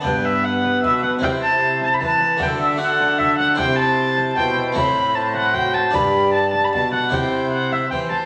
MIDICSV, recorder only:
0, 0, Header, 1, 2, 480
1, 0, Start_track
1, 0, Tempo, 393443
1, 54, Time_signature, 3, 2, 24, 8
1, 10071, End_track
2, 0, Start_track
2, 0, Title_t, "Recorder"
2, 0, Program_c, 0, 74
2, 58, Note_on_c, 0, 71, 70
2, 1510, Note_on_c, 0, 74, 62
2, 1528, Note_off_c, 0, 71, 0
2, 1564, Note_on_c, 0, 72, 68
2, 1576, Note_off_c, 0, 74, 0
2, 2456, Note_off_c, 0, 72, 0
2, 2456, Note_on_c, 0, 72, 75
2, 2500, Note_on_c, 0, 71, 81
2, 2512, Note_off_c, 0, 72, 0
2, 2936, Note_off_c, 0, 71, 0
2, 2959, Note_on_c, 0, 71, 66
2, 3018, Note_on_c, 0, 69, 72
2, 3030, Note_off_c, 0, 71, 0
2, 3417, Note_off_c, 0, 69, 0
2, 3426, Note_on_c, 0, 69, 80
2, 4382, Note_on_c, 0, 72, 76
2, 4401, Note_off_c, 0, 69, 0
2, 5331, Note_off_c, 0, 72, 0
2, 5339, Note_on_c, 0, 72, 84
2, 5804, Note_off_c, 0, 72, 0
2, 5813, Note_on_c, 0, 72, 68
2, 6278, Note_off_c, 0, 72, 0
2, 6285, Note_on_c, 0, 72, 89
2, 7236, Note_on_c, 0, 74, 75
2, 7255, Note_off_c, 0, 72, 0
2, 8339, Note_off_c, 0, 74, 0
2, 8681, Note_on_c, 0, 72, 65
2, 9600, Note_off_c, 0, 72, 0
2, 9648, Note_on_c, 0, 72, 69
2, 10071, Note_off_c, 0, 72, 0
2, 10071, End_track
0, 0, End_of_file